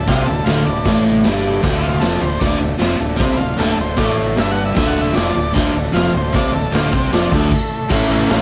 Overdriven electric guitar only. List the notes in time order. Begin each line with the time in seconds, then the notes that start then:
0.08 C3 C4
0.29 D2
0.46 D2 D3
0.68 D2
0.86 A2 A3
1.26 G2 G3
1.63 D2 D3
2.02 F2 F3
2.22 D2
2.42 D2 D3
2.59 D2
2.78 F2 F3
2.98 D2
3.16 C3 C4
3.38 D2
3.57 D2 D3
3.77 D2
3.97 A2 A3
4.37 G2 G3
4.75 D2 D3
5.13 F2 F3
5.34 D2
5.53 D2 D3
5.74 D2
5.92 F2 F3
6.15 D2
6.33 C3 C4
6.53 D2
6.72 D2 D3
6.93 C3 C4
7.12 F2 F3
7.33 D2 D3
7.89 A2 E3 A3 C#4 E4 A4
8.09 A3 C#4 E4 A4
8.30 A3 C#4 E4
8.34 A4